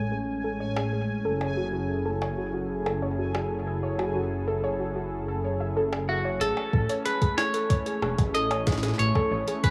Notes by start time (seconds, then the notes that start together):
Already playing: A1 G#3 A3 C#4 G#5
0.12 G#4
0.44 A4
0.60 C#5
0.76 G#4, high bongo
0.93 G#4
1.25 F#1 F#3 E4 G#4 A4
1.41 C#5, high bongo
1.57 F#4
1.73 F#4
2.06 A4
2.22 C#5, high bongo
2.38 F#4
2.54 F#4
2.86 A4, high bongo
3.02 C#5
3.18 F#4
3.35 F#4, high bongo
3.67 A4
3.83 C#5
3.99 F#4, high bongo
4.15 F#4
4.48 A4
4.64 C#5
4.80 F#4
4.96 F#4
5.28 A4
5.44 C#5
5.60 E5
5.77 A4
5.93 high bongo
6.09 F#4 E5
6.25 C#5
6.41 A1 E3 A3 C#4 G#4 A4, closed hi-hat
6.57 high bongo
6.73 A1 A4, kick
6.89 C#5, closed hi-hat
7.06 G#4 B4, closed hi-hat
7.22 G#4, kick, closed hi-hat
7.38 C#5, snare, high bongo
7.54 A4, closed hi-hat
7.70 C#5, kick, closed hi-hat
7.86 G#4, closed hi-hat
8.02 E1 G#4, high bongo
8.18 A1, kick, closed hi-hat, high bongo
8.34 A4 D#5, closed hi-hat
8.51 C#5, closed hi-hat, high bongo
8.67 G#4, kick, snare, cabasa
8.72 snare
8.78 snare
8.83 G#4, snare, closed hi-hat, cabasa
8.88 snare
8.94 snare
8.99 A1 C#5, closed hi-hat
9.15 A4, kick, high bongo
9.31 A1 C#5
9.48 G#4, closed hi-hat
9.64 G#4 B4, kick, closed hi-hat